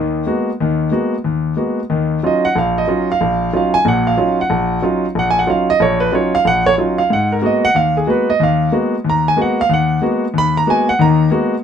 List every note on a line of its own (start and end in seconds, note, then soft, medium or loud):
0.00 0.23 D#2 medium
0.00 0.23 D#3 medium
0.27 0.49 G#3 medium
0.27 0.49 A#3 soft
0.27 0.49 B3 soft
0.27 0.49 F#4 medium
0.60 0.88 D#2 medium
0.60 0.88 D#3 medium
0.91 1.14 G#3 medium
0.91 1.14 A#3 soft
0.91 1.14 B3 medium
0.91 1.14 F#4 medium
1.24 1.53 D#2 medium
1.56 1.79 G#3 medium
1.56 1.79 A#3 soft
1.56 1.79 B3 soft
1.56 1.79 F#4 medium
1.90 2.18 D#2 medium
1.90 2.18 D#3 medium
2.23 2.45 F#3 medium
2.23 2.45 C#4 medium
2.23 2.45 D#4 medium
2.23 2.45 F4 medium
2.23 2.45 D#5 medium
2.45 2.56 F#5 medium
2.56 2.83 A#1 medium
2.56 2.77 F5 medium
2.78 3.07 D#5 medium
2.88 3.09 F#3 medium
2.88 3.10 C#4 soft
2.88 3.10 D#4 soft
2.88 3.10 F4 medium
3.12 3.51 F5 medium
3.21 3.49 A#1 medium
3.53 3.75 F#3 medium
3.53 3.75 C#4 soft
3.53 3.75 D#4 soft
3.53 3.75 F4 medium
3.53 3.75 F5 medium
3.74 3.85 G#5 loud
3.85 4.13 A#1 medium
3.85 4.13 A#2 medium
3.85 4.07 F#5 medium
4.07 4.37 F5 medium
4.17 4.39 F#3 medium
4.17 4.39 C#4 medium
4.17 4.39 D#4 soft
4.17 4.40 F4 medium
4.41 4.81 F#5 medium
4.50 4.78 A#1 medium
4.82 5.04 F#3 medium
4.82 5.04 C#4 soft
4.82 5.05 D#4 medium
4.82 5.05 F4 medium
5.15 5.43 A#1 medium
5.15 5.28 F#5 medium
5.30 5.39 G#5 medium
5.39 5.48 F#5 medium
5.47 5.69 F#3 medium
5.47 5.69 C#4 soft
5.47 5.69 D#4 medium
5.47 5.69 F4 medium
5.47 5.69 F5 medium
5.70 5.81 D#5 loud
5.80 6.08 A#1 medium
5.80 6.01 C#5 medium
6.00 6.12 B4 medium
6.12 6.34 F#3 medium
6.12 6.34 C#4 medium
6.12 6.34 D#4 medium
6.12 6.35 F4 medium
6.12 6.34 C#5 medium
6.35 6.45 F5 loud
6.45 6.73 A#1 medium
6.45 6.66 F#5 loud
6.66 6.73 C#5 loud
6.78 6.99 F#3 medium
6.78 7.00 C#4 soft
6.78 7.00 D#4 soft
6.78 7.00 F4 medium
6.98 7.10 F5 medium
7.10 7.38 G#2 medium
7.10 7.32 F#5 medium
7.32 7.43 A#4 medium
7.42 7.64 G#3 medium
7.42 7.64 A#3 medium
7.42 7.64 B3 medium
7.42 7.64 F#4 medium
7.46 7.64 D#5 medium
7.65 7.75 F#5 loud
7.75 8.03 D#2 medium
7.75 7.95 F5 medium
7.97 8.08 G#4 medium
8.07 8.29 G#3 medium
8.07 8.29 A#3 soft
8.07 8.29 B3 soft
8.07 8.29 F#4 medium
8.07 8.29 B4 medium
8.30 8.40 D#5 medium
8.40 8.68 D#2 medium
8.40 8.72 F5 medium
8.72 8.94 G#3 medium
8.72 8.94 A#3 medium
8.72 8.94 B3 medium
8.72 8.94 F#4 medium
9.04 9.33 D#2 medium
9.10 9.27 A#5 medium
9.28 9.38 G#5 medium
9.36 9.59 G#3 medium
9.36 9.59 A#3 soft
9.36 9.59 B3 medium
9.36 9.59 F#4 medium
9.42 9.59 F#5 medium
9.61 9.71 F5 loud
9.69 9.98 D#2 medium
9.74 10.02 F#5 medium
10.02 10.24 G#3 medium
10.02 10.24 A#3 medium
10.02 10.24 B3 medium
10.02 10.24 F#4 medium
10.34 10.62 D#2 medium
10.38 10.56 B5 loud
10.57 10.68 A#5 medium
10.67 10.89 G#3 medium
10.67 10.89 A#3 soft
10.67 10.89 B3 medium
10.67 10.89 F#4 medium
10.67 10.89 G#5 medium
10.89 11.00 F#5 loud
10.99 11.27 D#2 medium
10.99 11.28 D#3 medium
10.99 11.31 A#5 medium
11.31 11.54 G#3 medium
11.31 11.53 A#3 medium
11.31 11.54 B3 medium
11.31 11.54 F#4 medium